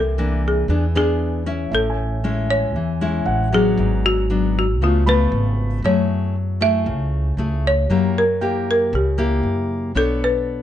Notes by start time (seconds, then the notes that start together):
Already playing: C2 C3 A4
0.18 E3 A#3 D4
0.48 G#4
0.68 E2 E3 B3 D4 G#4
0.95 B3 D4 G#4
1.46 C#4 E4
1.71 A1 A2 A4 E5
1.90 G#5
2.24 G#3 C#4 E4
2.51 C#5
2.74 E2 E3
3.01 G#3 C#4 E4
3.26 A1 F#5
3.52 F#3 B3 D4 G#4
3.77 G#1 G#2
4.06 F#4
4.30 F#3 B3 D4
4.59 F#4
4.80 C#2 C#3 A3 B3 F4
4.84 F4
5.06 A3 B3 F4 B4 B5
5.32 G#1
5.82 F#2 F#3 A3 E4 G#4 C#5
6.61 A3 E4 G#4 E5
6.86 C#2 C#3
7.37 C#2 A3 E4 G#4
7.67 C#5
7.89 F#2 F#3 A#3 E4 G4
8.18 A#4
8.41 A#3 E4 G4 G5
8.71 A#4
8.93 C#2 C#3 G4
9.18 A#3 E4 G4
9.43 F#2
9.95 B1 B3 D4 A4 C#5
10.24 B4